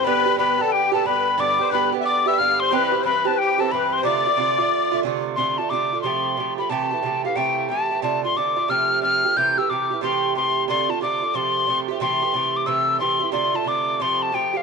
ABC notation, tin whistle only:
X:1
M:4/4
L:1/8
Q:"Swing" 1/4=181
K:Ddor
V:1 name="Tin whistle"
b2 b a g a b2 | d'2 b z d' e' f' c' | b2 b a g a b c' | d'6 z2 |
c' a d'2 c'3 b | a3 f g2 a2 | a c' d'2 f'2 f'2 | g' e' d'2 c'2 c'2 |
c' a d'2 c'3 z | c'3 d' e'2 c'2 | c' a d'2 c' a g f |]